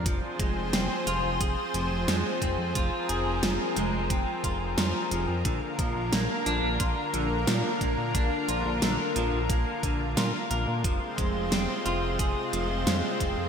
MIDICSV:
0, 0, Header, 1, 5, 480
1, 0, Start_track
1, 0, Tempo, 674157
1, 41, Time_signature, 4, 2, 24, 8
1, 9603, End_track
2, 0, Start_track
2, 0, Title_t, "Analog synth pad"
2, 0, Program_c, 0, 89
2, 41, Note_on_c, 0, 53, 81
2, 41, Note_on_c, 0, 68, 75
2, 41, Note_on_c, 0, 72, 90
2, 42, Note_on_c, 0, 60, 75
2, 1942, Note_off_c, 0, 72, 0
2, 1961, Note_on_c, 0, 70, 93
2, 3853, Note_off_c, 0, 53, 0
2, 3853, Note_off_c, 0, 60, 0
2, 3853, Note_off_c, 0, 68, 0
2, 3879, Note_on_c, 0, 65, 77
2, 3880, Note_on_c, 0, 50, 85
2, 3880, Note_on_c, 0, 58, 78
2, 7692, Note_off_c, 0, 50, 0
2, 7692, Note_off_c, 0, 58, 0
2, 7693, Note_off_c, 0, 70, 0
2, 7720, Note_on_c, 0, 48, 84
2, 7721, Note_on_c, 0, 56, 79
2, 7721, Note_on_c, 0, 72, 91
2, 9603, Note_off_c, 0, 48, 0
2, 9603, Note_off_c, 0, 56, 0
2, 9603, Note_off_c, 0, 65, 0
2, 9603, Note_off_c, 0, 72, 0
2, 9603, End_track
3, 0, Start_track
3, 0, Title_t, "Clean electric guitar"
3, 0, Program_c, 1, 27
3, 42, Note_on_c, 1, 53, 101
3, 135, Note_off_c, 1, 53, 0
3, 283, Note_on_c, 1, 56, 74
3, 510, Note_off_c, 1, 56, 0
3, 522, Note_on_c, 1, 60, 72
3, 677, Note_off_c, 1, 60, 0
3, 762, Note_on_c, 1, 65, 97
3, 916, Note_off_c, 1, 65, 0
3, 1003, Note_on_c, 1, 68, 81
3, 1157, Note_off_c, 1, 68, 0
3, 1243, Note_on_c, 1, 53, 70
3, 1335, Note_off_c, 1, 53, 0
3, 1482, Note_on_c, 1, 56, 70
3, 1637, Note_off_c, 1, 56, 0
3, 1721, Note_on_c, 1, 60, 75
3, 1876, Note_off_c, 1, 60, 0
3, 1961, Note_on_c, 1, 65, 100
3, 2189, Note_off_c, 1, 65, 0
3, 2202, Note_on_c, 1, 68, 74
3, 2356, Note_off_c, 1, 68, 0
3, 2442, Note_on_c, 1, 53, 93
3, 2534, Note_off_c, 1, 53, 0
3, 2681, Note_on_c, 1, 56, 94
3, 2836, Note_off_c, 1, 56, 0
3, 2921, Note_on_c, 1, 60, 97
3, 3149, Note_off_c, 1, 60, 0
3, 3162, Note_on_c, 1, 65, 72
3, 3254, Note_off_c, 1, 65, 0
3, 3402, Note_on_c, 1, 65, 74
3, 3556, Note_off_c, 1, 65, 0
3, 3641, Note_on_c, 1, 53, 72
3, 3796, Note_off_c, 1, 53, 0
3, 3880, Note_on_c, 1, 50, 100
3, 3974, Note_off_c, 1, 50, 0
3, 4121, Note_on_c, 1, 53, 76
3, 4349, Note_off_c, 1, 53, 0
3, 4361, Note_on_c, 1, 58, 73
3, 4516, Note_off_c, 1, 58, 0
3, 4600, Note_on_c, 1, 62, 100
3, 4756, Note_off_c, 1, 62, 0
3, 4841, Note_on_c, 1, 65, 80
3, 4996, Note_off_c, 1, 65, 0
3, 5080, Note_on_c, 1, 50, 72
3, 5174, Note_off_c, 1, 50, 0
3, 5321, Note_on_c, 1, 53, 73
3, 5476, Note_off_c, 1, 53, 0
3, 5560, Note_on_c, 1, 58, 73
3, 5716, Note_off_c, 1, 58, 0
3, 5800, Note_on_c, 1, 62, 99
3, 6029, Note_off_c, 1, 62, 0
3, 6041, Note_on_c, 1, 65, 76
3, 6196, Note_off_c, 1, 65, 0
3, 6280, Note_on_c, 1, 50, 98
3, 6374, Note_off_c, 1, 50, 0
3, 6520, Note_on_c, 1, 53, 102
3, 6676, Note_off_c, 1, 53, 0
3, 6761, Note_on_c, 1, 58, 93
3, 6989, Note_off_c, 1, 58, 0
3, 7001, Note_on_c, 1, 50, 71
3, 7229, Note_off_c, 1, 50, 0
3, 7241, Note_on_c, 1, 65, 74
3, 7334, Note_off_c, 1, 65, 0
3, 7481, Note_on_c, 1, 70, 72
3, 7636, Note_off_c, 1, 70, 0
3, 7721, Note_on_c, 1, 53, 97
3, 7814, Note_off_c, 1, 53, 0
3, 7962, Note_on_c, 1, 56, 74
3, 8190, Note_off_c, 1, 56, 0
3, 8202, Note_on_c, 1, 60, 73
3, 8356, Note_off_c, 1, 60, 0
3, 8441, Note_on_c, 1, 65, 96
3, 8596, Note_off_c, 1, 65, 0
3, 8682, Note_on_c, 1, 68, 82
3, 8837, Note_off_c, 1, 68, 0
3, 8922, Note_on_c, 1, 53, 71
3, 9015, Note_off_c, 1, 53, 0
3, 9162, Note_on_c, 1, 56, 71
3, 9316, Note_off_c, 1, 56, 0
3, 9402, Note_on_c, 1, 60, 72
3, 9557, Note_off_c, 1, 60, 0
3, 9603, End_track
4, 0, Start_track
4, 0, Title_t, "Analog synth bass"
4, 0, Program_c, 2, 38
4, 41, Note_on_c, 2, 29, 93
4, 151, Note_off_c, 2, 29, 0
4, 281, Note_on_c, 2, 29, 95
4, 391, Note_off_c, 2, 29, 0
4, 402, Note_on_c, 2, 29, 82
4, 512, Note_off_c, 2, 29, 0
4, 521, Note_on_c, 2, 29, 100
4, 631, Note_off_c, 2, 29, 0
4, 761, Note_on_c, 2, 29, 96
4, 871, Note_off_c, 2, 29, 0
4, 880, Note_on_c, 2, 29, 79
4, 991, Note_off_c, 2, 29, 0
4, 1000, Note_on_c, 2, 29, 91
4, 1111, Note_off_c, 2, 29, 0
4, 1241, Note_on_c, 2, 29, 90
4, 1351, Note_off_c, 2, 29, 0
4, 1360, Note_on_c, 2, 29, 79
4, 1471, Note_off_c, 2, 29, 0
4, 1481, Note_on_c, 2, 41, 98
4, 1591, Note_off_c, 2, 41, 0
4, 1720, Note_on_c, 2, 29, 92
4, 1831, Note_off_c, 2, 29, 0
4, 1840, Note_on_c, 2, 41, 81
4, 1951, Note_off_c, 2, 41, 0
4, 1960, Note_on_c, 2, 29, 94
4, 2071, Note_off_c, 2, 29, 0
4, 2201, Note_on_c, 2, 29, 92
4, 2311, Note_off_c, 2, 29, 0
4, 2321, Note_on_c, 2, 29, 78
4, 2431, Note_off_c, 2, 29, 0
4, 2441, Note_on_c, 2, 29, 98
4, 2551, Note_off_c, 2, 29, 0
4, 2680, Note_on_c, 2, 29, 92
4, 2791, Note_off_c, 2, 29, 0
4, 2801, Note_on_c, 2, 29, 80
4, 2911, Note_off_c, 2, 29, 0
4, 2921, Note_on_c, 2, 29, 93
4, 3031, Note_off_c, 2, 29, 0
4, 3160, Note_on_c, 2, 29, 91
4, 3270, Note_off_c, 2, 29, 0
4, 3281, Note_on_c, 2, 29, 82
4, 3391, Note_off_c, 2, 29, 0
4, 3401, Note_on_c, 2, 41, 101
4, 3511, Note_off_c, 2, 41, 0
4, 3640, Note_on_c, 2, 29, 90
4, 3751, Note_off_c, 2, 29, 0
4, 3761, Note_on_c, 2, 41, 80
4, 3871, Note_off_c, 2, 41, 0
4, 3881, Note_on_c, 2, 34, 99
4, 3991, Note_off_c, 2, 34, 0
4, 4121, Note_on_c, 2, 34, 96
4, 4231, Note_off_c, 2, 34, 0
4, 4240, Note_on_c, 2, 34, 80
4, 4350, Note_off_c, 2, 34, 0
4, 4359, Note_on_c, 2, 34, 101
4, 4470, Note_off_c, 2, 34, 0
4, 4598, Note_on_c, 2, 34, 94
4, 4710, Note_off_c, 2, 34, 0
4, 4720, Note_on_c, 2, 34, 83
4, 4830, Note_off_c, 2, 34, 0
4, 4841, Note_on_c, 2, 34, 92
4, 4951, Note_off_c, 2, 34, 0
4, 5080, Note_on_c, 2, 34, 92
4, 5191, Note_off_c, 2, 34, 0
4, 5200, Note_on_c, 2, 34, 79
4, 5311, Note_off_c, 2, 34, 0
4, 5320, Note_on_c, 2, 46, 98
4, 5431, Note_off_c, 2, 46, 0
4, 5561, Note_on_c, 2, 34, 92
4, 5671, Note_off_c, 2, 34, 0
4, 5681, Note_on_c, 2, 46, 80
4, 5791, Note_off_c, 2, 46, 0
4, 5800, Note_on_c, 2, 34, 99
4, 5911, Note_off_c, 2, 34, 0
4, 6041, Note_on_c, 2, 34, 91
4, 6151, Note_off_c, 2, 34, 0
4, 6161, Note_on_c, 2, 34, 81
4, 6271, Note_off_c, 2, 34, 0
4, 6282, Note_on_c, 2, 34, 102
4, 6391, Note_off_c, 2, 34, 0
4, 6522, Note_on_c, 2, 34, 95
4, 6631, Note_off_c, 2, 34, 0
4, 6642, Note_on_c, 2, 34, 82
4, 6752, Note_off_c, 2, 34, 0
4, 6760, Note_on_c, 2, 34, 95
4, 6871, Note_off_c, 2, 34, 0
4, 7001, Note_on_c, 2, 34, 89
4, 7111, Note_off_c, 2, 34, 0
4, 7120, Note_on_c, 2, 34, 78
4, 7231, Note_off_c, 2, 34, 0
4, 7240, Note_on_c, 2, 46, 103
4, 7351, Note_off_c, 2, 46, 0
4, 7480, Note_on_c, 2, 34, 90
4, 7591, Note_off_c, 2, 34, 0
4, 7602, Note_on_c, 2, 46, 80
4, 7712, Note_off_c, 2, 46, 0
4, 7721, Note_on_c, 2, 29, 98
4, 7831, Note_off_c, 2, 29, 0
4, 7961, Note_on_c, 2, 29, 93
4, 8071, Note_off_c, 2, 29, 0
4, 8083, Note_on_c, 2, 29, 80
4, 8192, Note_off_c, 2, 29, 0
4, 8202, Note_on_c, 2, 29, 100
4, 8312, Note_off_c, 2, 29, 0
4, 8441, Note_on_c, 2, 29, 92
4, 8551, Note_off_c, 2, 29, 0
4, 8562, Note_on_c, 2, 29, 80
4, 8671, Note_off_c, 2, 29, 0
4, 8681, Note_on_c, 2, 29, 96
4, 8791, Note_off_c, 2, 29, 0
4, 8921, Note_on_c, 2, 29, 97
4, 9031, Note_off_c, 2, 29, 0
4, 9040, Note_on_c, 2, 29, 81
4, 9151, Note_off_c, 2, 29, 0
4, 9161, Note_on_c, 2, 41, 103
4, 9271, Note_off_c, 2, 41, 0
4, 9401, Note_on_c, 2, 29, 88
4, 9511, Note_off_c, 2, 29, 0
4, 9521, Note_on_c, 2, 41, 81
4, 9603, Note_off_c, 2, 41, 0
4, 9603, End_track
5, 0, Start_track
5, 0, Title_t, "Drums"
5, 41, Note_on_c, 9, 36, 110
5, 42, Note_on_c, 9, 42, 96
5, 112, Note_off_c, 9, 36, 0
5, 113, Note_off_c, 9, 42, 0
5, 281, Note_on_c, 9, 36, 99
5, 282, Note_on_c, 9, 42, 64
5, 353, Note_off_c, 9, 36, 0
5, 353, Note_off_c, 9, 42, 0
5, 522, Note_on_c, 9, 38, 113
5, 522, Note_on_c, 9, 42, 89
5, 593, Note_off_c, 9, 38, 0
5, 593, Note_off_c, 9, 42, 0
5, 762, Note_on_c, 9, 42, 66
5, 833, Note_off_c, 9, 42, 0
5, 1001, Note_on_c, 9, 36, 110
5, 1002, Note_on_c, 9, 42, 93
5, 1072, Note_off_c, 9, 36, 0
5, 1073, Note_off_c, 9, 42, 0
5, 1241, Note_on_c, 9, 42, 66
5, 1313, Note_off_c, 9, 42, 0
5, 1482, Note_on_c, 9, 38, 116
5, 1482, Note_on_c, 9, 42, 92
5, 1553, Note_off_c, 9, 38, 0
5, 1553, Note_off_c, 9, 42, 0
5, 1721, Note_on_c, 9, 36, 59
5, 1722, Note_on_c, 9, 42, 64
5, 1792, Note_off_c, 9, 36, 0
5, 1793, Note_off_c, 9, 42, 0
5, 1960, Note_on_c, 9, 36, 115
5, 1961, Note_on_c, 9, 42, 95
5, 2032, Note_off_c, 9, 36, 0
5, 2032, Note_off_c, 9, 42, 0
5, 2202, Note_on_c, 9, 42, 67
5, 2273, Note_off_c, 9, 42, 0
5, 2441, Note_on_c, 9, 38, 113
5, 2441, Note_on_c, 9, 42, 89
5, 2513, Note_off_c, 9, 38, 0
5, 2513, Note_off_c, 9, 42, 0
5, 2681, Note_on_c, 9, 42, 65
5, 2752, Note_off_c, 9, 42, 0
5, 2920, Note_on_c, 9, 36, 110
5, 2921, Note_on_c, 9, 42, 93
5, 2992, Note_off_c, 9, 36, 0
5, 2992, Note_off_c, 9, 42, 0
5, 3160, Note_on_c, 9, 36, 61
5, 3161, Note_on_c, 9, 42, 64
5, 3232, Note_off_c, 9, 36, 0
5, 3232, Note_off_c, 9, 42, 0
5, 3401, Note_on_c, 9, 38, 126
5, 3401, Note_on_c, 9, 42, 95
5, 3472, Note_off_c, 9, 38, 0
5, 3472, Note_off_c, 9, 42, 0
5, 3642, Note_on_c, 9, 42, 65
5, 3713, Note_off_c, 9, 42, 0
5, 3881, Note_on_c, 9, 36, 118
5, 3881, Note_on_c, 9, 42, 96
5, 3952, Note_off_c, 9, 36, 0
5, 3952, Note_off_c, 9, 42, 0
5, 4121, Note_on_c, 9, 36, 102
5, 4121, Note_on_c, 9, 42, 64
5, 4192, Note_off_c, 9, 36, 0
5, 4192, Note_off_c, 9, 42, 0
5, 4362, Note_on_c, 9, 38, 119
5, 4362, Note_on_c, 9, 42, 91
5, 4433, Note_off_c, 9, 38, 0
5, 4433, Note_off_c, 9, 42, 0
5, 4602, Note_on_c, 9, 42, 64
5, 4673, Note_off_c, 9, 42, 0
5, 4841, Note_on_c, 9, 36, 120
5, 4841, Note_on_c, 9, 42, 93
5, 4912, Note_off_c, 9, 36, 0
5, 4912, Note_off_c, 9, 42, 0
5, 5082, Note_on_c, 9, 42, 63
5, 5153, Note_off_c, 9, 42, 0
5, 5322, Note_on_c, 9, 38, 121
5, 5322, Note_on_c, 9, 42, 93
5, 5393, Note_off_c, 9, 38, 0
5, 5393, Note_off_c, 9, 42, 0
5, 5561, Note_on_c, 9, 36, 63
5, 5562, Note_on_c, 9, 42, 63
5, 5632, Note_off_c, 9, 36, 0
5, 5633, Note_off_c, 9, 42, 0
5, 5801, Note_on_c, 9, 36, 117
5, 5801, Note_on_c, 9, 42, 89
5, 5872, Note_off_c, 9, 36, 0
5, 5872, Note_off_c, 9, 42, 0
5, 6042, Note_on_c, 9, 42, 62
5, 6113, Note_off_c, 9, 42, 0
5, 6281, Note_on_c, 9, 38, 117
5, 6281, Note_on_c, 9, 42, 85
5, 6352, Note_off_c, 9, 38, 0
5, 6352, Note_off_c, 9, 42, 0
5, 6521, Note_on_c, 9, 42, 64
5, 6592, Note_off_c, 9, 42, 0
5, 6761, Note_on_c, 9, 36, 120
5, 6762, Note_on_c, 9, 42, 90
5, 6832, Note_off_c, 9, 36, 0
5, 6833, Note_off_c, 9, 42, 0
5, 7001, Note_on_c, 9, 36, 59
5, 7002, Note_on_c, 9, 42, 62
5, 7072, Note_off_c, 9, 36, 0
5, 7073, Note_off_c, 9, 42, 0
5, 7242, Note_on_c, 9, 38, 120
5, 7242, Note_on_c, 9, 42, 90
5, 7313, Note_off_c, 9, 38, 0
5, 7313, Note_off_c, 9, 42, 0
5, 7481, Note_on_c, 9, 42, 64
5, 7552, Note_off_c, 9, 42, 0
5, 7721, Note_on_c, 9, 36, 113
5, 7722, Note_on_c, 9, 42, 87
5, 7792, Note_off_c, 9, 36, 0
5, 7793, Note_off_c, 9, 42, 0
5, 7961, Note_on_c, 9, 36, 99
5, 7962, Note_on_c, 9, 42, 60
5, 8032, Note_off_c, 9, 36, 0
5, 8033, Note_off_c, 9, 42, 0
5, 8202, Note_on_c, 9, 38, 113
5, 8202, Note_on_c, 9, 42, 85
5, 8273, Note_off_c, 9, 38, 0
5, 8273, Note_off_c, 9, 42, 0
5, 8442, Note_on_c, 9, 42, 60
5, 8513, Note_off_c, 9, 42, 0
5, 8681, Note_on_c, 9, 36, 113
5, 8683, Note_on_c, 9, 42, 87
5, 8752, Note_off_c, 9, 36, 0
5, 8754, Note_off_c, 9, 42, 0
5, 8923, Note_on_c, 9, 42, 60
5, 8994, Note_off_c, 9, 42, 0
5, 9163, Note_on_c, 9, 38, 119
5, 9163, Note_on_c, 9, 42, 89
5, 9234, Note_off_c, 9, 38, 0
5, 9234, Note_off_c, 9, 42, 0
5, 9401, Note_on_c, 9, 36, 60
5, 9402, Note_on_c, 9, 42, 60
5, 9472, Note_off_c, 9, 36, 0
5, 9474, Note_off_c, 9, 42, 0
5, 9603, End_track
0, 0, End_of_file